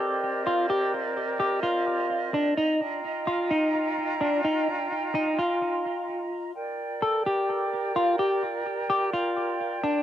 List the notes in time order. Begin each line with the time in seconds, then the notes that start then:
Already playing: C4 G4 A#4 D5 D#5
0.47 F4
0.70 G4
1.40 G4
1.63 F4
2.34 D4
2.57 D#4
2.80 F4 G5 A#5
3.27 F4
3.51 D#4
4.21 D4
4.45 D#4
5.15 D#4
5.39 F4
6.55 A#4 D5 G5
7.02 A4
7.26 G4
7.96 F4
8.19 G4
8.90 G4
9.13 F4
9.84 D4